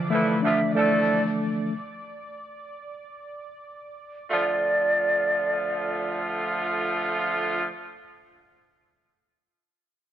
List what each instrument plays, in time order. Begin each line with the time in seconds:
Already playing: tine electric piano D3 E3 F3, analog synth pad D5
0.10 horn section A2 E3 F3 E4, tine electric piano A3, flute E5
0.42 horn section D3 F3 A3 F4, tine electric piano D4, flute E5
0.75 horn section F3 A3 E4 A4, tine electric piano A3, flute D5
4.30 horn section D3 F3 A3 F4, flute D5